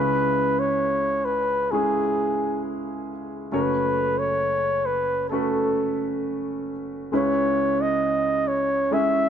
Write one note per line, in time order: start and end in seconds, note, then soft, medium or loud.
0.00 3.49 C#2 medium
0.00 3.49 C#3 medium
0.00 1.31 G#3 medium
0.00 1.31 C#4 medium
0.00 1.31 E4 medium
0.00 0.61 B4 medium
0.00 1.32 B4 medium
0.59 1.26 C#5 medium
1.25 1.73 B4 medium
1.71 3.10 G#3 medium
1.71 3.10 C#4 medium
1.71 3.11 E4 medium
1.71 2.62 G#4 medium
1.71 3.11 G#4 medium
3.52 7.08 F#1 soft
3.52 7.08 F#2 soft
3.52 4.90 A3 medium
3.52 4.90 C#4 medium
3.52 4.90 F#4 medium
3.52 4.20 B4 medium
3.52 4.91 C#5 medium
4.18 4.87 C#5 medium
4.86 5.29 B4 medium
5.29 6.69 A3 medium
5.29 6.70 C#4 medium
5.29 6.70 F#4 medium
5.29 6.17 A4 medium
5.33 6.70 B4 medium
7.12 9.29 C#2 soft
7.12 9.29 C#3 medium
7.12 8.50 G#3 medium
7.12 8.50 C#4 medium
7.12 8.50 E4 medium
7.12 8.51 B4 medium
7.16 7.83 C#5 medium
7.81 8.49 D#5 medium
8.48 8.95 C#5 medium
8.91 9.29 G#3 medium
8.91 9.29 C#4 medium
8.91 9.29 E4 medium
8.91 9.29 G#4 medium
8.91 9.29 E5 medium